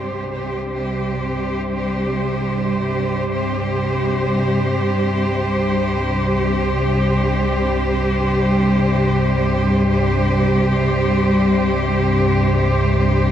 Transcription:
Already playing: synth drone C2 G2, cello section C3 G3 G4 C5
10.27 synth drone C2 G2

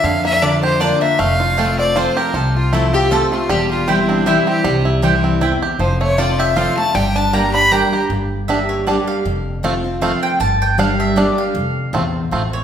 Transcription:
Already playing: five-string banjo A#3 D4
0.04 upright bass F2, steel-string acoustic guitar F2, five-string banjo D3, resonator guitar played with a steel bar F5, fiddle F5
0.25 five-string banjo A#3, fiddle E5, resonator guitar played with a steel bar E5
0.41 steel-string acoustic guitar D3 A#3 D4 F4, mandolin A#3 F4 D5 A#5, five-string banjo D4, resonator guitar played with a steel bar D5, fiddle D5
0.63 five-string banjo G4, resonator guitar played with a steel bar C5, fiddle C5
0.80 steel-string acoustic guitar D3 A#3 D4 F4, mandolin A#3 F4 D5 A#5, five-string banjo D4, fiddle D5, resonator guitar played with a steel bar D5
1.01 five-string banjo A#3, resonator guitar played with a steel bar E5, fiddle E5
1.19 upright bass F1, steel-string acoustic guitar F2, five-string banjo A3, fiddle F5, resonator guitar played with a steel bar F5
1.40 five-string banjo F4
1.57 steel-string acoustic guitar F3 A3 C4 F4, five-string banjo A3, mandolin C4 F4 C5 A5
1.78 five-string banjo C4, fiddle D5, resonator guitar played with a steel bar D5
1.96 steel-string acoustic guitar F3 A3 C4 F4, mandolin C4 F4 C5 A5, five-string banjo F4, fiddle C5, resonator guitar played with a steel bar C5
2.17 five-string banjo G4, fiddle A#4, resonator guitar played with a steel bar A#4
2.34 upright bass C2, steel-string acoustic guitar C3, five-string banjo F4, fiddle A4, resonator guitar played with a steel bar A4
2.56 fiddle F4, resonator guitar played with a steel bar F4
2.72 steel-string acoustic guitar F3 A3 C4 F4, five-string banjo A3, mandolin C4 F4 C5 A5, fiddle E4, resonator guitar played with a steel bar E4
2.93 five-string banjo C4, steel-string acoustic guitar C4 F4, fiddle G4, resonator guitar played with a steel bar G4
3.10 steel-string acoustic guitar F3 A3 C4 F4, mandolin C4 F4 C5 A5, five-string banjo F4, fiddle A4, resonator guitar played with a steel bar A4
3.32 five-string banjo A3, steel-string acoustic guitar C4 F4, fiddle F4, resonator guitar played with a steel bar F4
3.49 upright bass E1, steel-string acoustic guitar E2, five-string banjo G3, fiddle G4, resonator guitar played with a steel bar G4
3.71 fiddle F4, resonator guitar played with a steel bar F4
3.88 steel-string acoustic guitar E3 G3 C4 E4, five-string banjo G3, mandolin C4 E4 C5 G5, resonator guitar played with a steel bar E4, fiddle E4
4.09 five-string banjo C4, resonator guitar played with a steel bar D4, fiddle D4
4.26 steel-string acoustic guitar E3 G3 C4 E4, five-string banjo G3, mandolin C4 E4 C5 G5, fiddle E4, resonator guitar played with a steel bar E4
4.47 five-string banjo C4, fiddle G4, resonator guitar played with a steel bar G4
4.64 upright bass C2, steel-string acoustic guitar C3, five-string banjo G3
4.85 five-string banjo E4
5.02 steel-string acoustic guitar E3 G3 C4 E4, five-string banjo G3, mandolin C4 E4 C5 G5
5.24 five-string banjo C4
5.41 steel-string acoustic guitar E2, mandolin C4 E4 C5 G5, five-string banjo E4
5.62 five-string banjo G4
5.79 upright bass F1, steel-string acoustic guitar F2, five-string banjo F3, resonator guitar played with a steel bar C5, fiddle C5
6.01 five-string banjo A3, resonator guitar played with a steel bar C#5, fiddle C#5
6.17 steel-string acoustic guitar F3 A3 C4 F4, mandolin C4 F4 C5 A5, five-string banjo F4, resonator guitar played with a steel bar D5, fiddle D5
6.39 five-string banjo G4, fiddle E5, resonator guitar played with a steel bar E5
6.56 steel-string acoustic guitar F3 A3 C4 F4, mandolin C4 F4 C5 A5, five-string banjo F4, fiddle F5, resonator guitar played with a steel bar F5
6.77 five-string banjo A3, steel-string acoustic guitar C4 F4, fiddle A5, resonator guitar played with a steel bar A5
6.94 upright bass G1, steel-string acoustic guitar G2, five-string banjo G3, fiddle G5, resonator guitar played with a steel bar G5
7.16 five-string banjo D4, resonator guitar played with a steel bar A5, fiddle A5
7.33 steel-string acoustic guitar G3 A#3 D4 G4, five-string banjo G3, mandolin A#3 G4 D5 G5, resonator guitar played with a steel bar A#5, fiddle A#5
7.53 five-string banjo D4, fiddle B5, resonator guitar played with a steel bar B5
7.71 steel-string acoustic guitar G3 A#3 D4 G4, mandolin A#3 G4 D5 G5, five-string banjo D4, resonator guitar played with a steel bar A#5, fiddle A#5
7.92 steel-string acoustic guitar D4 G4, five-string banjo G4
8.10 upright bass G1, steel-string acoustic guitar G2
8.48 steel-string acoustic guitar G3 A#3 D4 G4, five-string banjo G3 D4, mandolin E5
8.69 mandolin C#5
8.87 steel-string acoustic guitar G3 A#3 D4 G4, five-string banjo G3 D4, mandolin D5
9.07 mandolin F5
9.25 upright bass F1, steel-string acoustic guitar F2
9.63 steel-string acoustic guitar F3 A3 C4 F4, five-string banjo A3 C4 F4
9.84 steel-string acoustic guitar C4 F4
10.01 steel-string acoustic guitar F3 A3 C4 F4, five-string banjo A3 C4 F4, mandolin F5
10.23 mandolin G5
10.40 upright bass G1, steel-string acoustic guitar G2, mandolin A5
10.62 mandolin G5
10.78 steel-string acoustic guitar G3 A#3 D4 G4, five-string banjo G3 D4, mandolin F5
11.00 mandolin E5
11.16 steel-string acoustic guitar G3 A#3 D4 G4, five-string banjo G3 D4, mandolin D5
11.38 mandolin F5
11.54 upright bass F1, steel-string acoustic guitar F2
11.93 upright bass A#1, steel-string acoustic guitar E2, five-string banjo A3 C4 F4
12.31 upright bass A1, steel-string acoustic guitar F2, five-string banjo A3 C4 F4
12.53 mandolin C#5

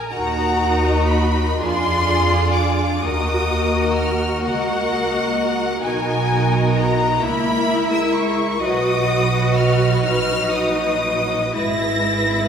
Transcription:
Already playing: viola section A#4, violin section A#5
0.10 double bass section D#2, viola section D#4 F#4, cello section F#4, violin section A#4 F#5 A#5
0.85 violin section D#5
1.08 violin section B5
1.57 double bass section F2, viola section D4 F4, cello section F4, violin section G#4 D5 C6
2.55 violin section D6
3.01 double bass section D#2, viola section A#3 F#4, cello section F#4, violin section A#4 D#5 D#6
3.96 violin section F6
4.43 double bass section C#2, viola section A#3 F#4, violin section A#4 D#5 F#5
5.82 double bass section B1, viola section B3 F#4, cello section D#4, violin section A#4 D#5 G#5
6.77 violin section A#5
7.21 double bass section C#2, viola section A#3 E4, cello section E4, violin section A#4 E5 B5
7.93 viola section G#3, violin section E6
8.15 violin section C#6
8.60 double bass section B1, viola section F#3 F#4, cello section F#4, violin section B4 D#5 D#6
9.56 violin section F6
10.01 double bass section A#1, cello section D#4, violin section F6
10.53 violin section D#6
11.53 double bass section G#1, viola section G#3 E4, cello section E4, violin section B4 E5 A#6

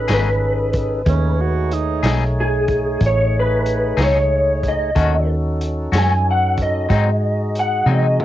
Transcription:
Already playing: tonewheel organ C#4 D#4 G#4 A4
0.08 fingered electric bass G#1, clean electric guitar B2 A3 D#4 G#4, snare, closed hi-hat
0.13 clean electric guitar B4
0.73 kick, closed hi-hat
1.05 fingered electric bass D#2, tonewheel organ A3 D#4 G#4 C#5, tenor saxophone C#4, kick, closed hi-hat
1.41 tenor saxophone F#4
1.71 tenor saxophone D#4, closed hi-hat
2.03 fingered electric bass B1, clean electric guitar B2 A3 D#4 G#4, snare, closed hi-hat
2.40 clean electric guitar G#4
2.68 kick, closed hi-hat
3.01 fingered electric bass A1, kick, closed hi-hat
3.06 clean electric guitar C#5
3.39 clean electric guitar B4
3.66 closed hi-hat
3.97 fingered electric bass C#2, clean electric guitar B2 A3 D#4 G#4, snare, closed hi-hat
4.03 clean electric guitar C#5
4.63 kick, closed hi-hat
4.69 clean electric guitar D#5
4.95 fingered electric bass D#2, clean electric guitar D#3 A3 C#4 F#4, tonewheel organ C#4 D#4 F#4 A4, kick, closed hi-hat
5.61 closed hi-hat
5.92 fingered electric bass F#2, clean electric guitar D#3 A3 C#4 F#4, snare, closed hi-hat
5.98 clean electric guitar G#5
6.30 clean electric guitar F#5
6.57 kick, closed hi-hat
6.62 clean electric guitar D#5
6.89 clean electric guitar G#2 F#3 C4 D#4, fingered electric bass G#2, tonewheel organ G#3 D#4 F#4 G#4, kick, closed hi-hat
7.55 closed hi-hat
7.59 clean electric guitar F#5
7.86 clean electric guitar G#2 F#3 C4 D#4, fingered electric bass C3, high tom
7.92 clean electric guitar D#5
8.20 mid tom

